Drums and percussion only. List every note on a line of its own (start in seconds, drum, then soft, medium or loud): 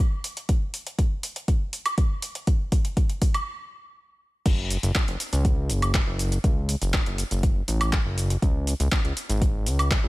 0.24 open hi-hat loud
0.37 closed hi-hat medium
0.49 kick loud
0.49 closed hi-hat medium
0.74 open hi-hat loud
0.87 closed hi-hat medium
0.99 kick medium
0.99 closed hi-hat medium
1.23 open hi-hat loud
1.36 closed hi-hat medium
1.48 kick loud
1.48 closed hi-hat medium
1.73 open hi-hat loud
1.86 closed hi-hat soft
1.86 high woodblock medium
1.98 kick loud
1.98 closed hi-hat medium
2.22 open hi-hat loud
2.35 closed hi-hat medium
2.47 kick loud
2.47 closed hi-hat medium
2.72 kick loud
2.72 open hi-hat loud
2.85 closed hi-hat medium
2.97 kick loud
2.97 closed hi-hat medium
3.09 closed hi-hat soft
3.22 kick loud
3.22 open hi-hat loud
3.34 closed hi-hat medium
3.34 high woodblock medium
4.46 kick loud
4.46 closed hi-hat medium
4.46 crash loud
4.46 shaker soft
4.71 open hi-hat loud
4.71 shaker medium
4.83 closed hi-hat medium
4.83 shaker soft
4.95 kick loud
4.95 clap loud
4.95 closed hi-hat medium
4.95 shaker soft
5.08 closed hi-hat soft
5.20 open hi-hat loud
5.20 shaker medium
5.33 closed hi-hat medium
5.33 shaker soft
5.45 kick loud
5.45 closed hi-hat medium
5.45 shaker soft
5.70 open hi-hat loud
5.70 shaker medium
5.82 closed hi-hat medium
5.82 high woodblock medium
5.82 shaker soft
5.94 kick loud
5.94 clap loud
5.94 closed hi-hat medium
5.94 shaker soft
6.19 open hi-hat loud
6.19 shaker medium
6.32 closed hi-hat medium
6.32 shaker soft
6.44 kick loud
6.44 closed hi-hat medium
6.44 shaker soft
6.69 open hi-hat loud
6.69 shaker medium
6.82 closed hi-hat medium
6.82 shaker soft
6.94 kick loud
6.94 clap loud
6.94 closed hi-hat medium
6.94 shaker soft
7.06 closed hi-hat soft
7.18 open hi-hat loud
7.18 shaker medium
7.31 closed hi-hat medium
7.31 shaker soft
7.43 kick loud
7.43 closed hi-hat medium
7.43 shaker soft
7.68 open hi-hat loud
7.68 shaker medium
7.81 closed hi-hat medium
7.81 high woodblock medium
7.81 shaker soft
7.93 kick loud
7.93 clap loud
7.93 closed hi-hat medium
7.93 shaker soft
8.18 open hi-hat loud
8.18 shaker medium
8.30 closed hi-hat medium
8.30 shaker soft
8.42 kick loud
8.42 closed hi-hat medium
8.42 shaker soft
8.67 open hi-hat loud
8.67 shaker medium
8.80 closed hi-hat medium
8.80 shaker soft
8.92 kick loud
8.92 clap loud
8.92 closed hi-hat medium
8.92 shaker soft
9.05 closed hi-hat soft
9.17 open hi-hat loud
9.17 shaker medium
9.30 closed hi-hat medium
9.30 shaker soft
9.42 kick loud
9.42 closed hi-hat medium
9.42 shaker soft
9.66 open hi-hat loud
9.66 shaker medium
9.79 closed hi-hat soft
9.79 high woodblock medium
9.79 shaker soft
9.91 kick loud
9.91 clap loud
9.91 closed hi-hat medium
9.91 shaker soft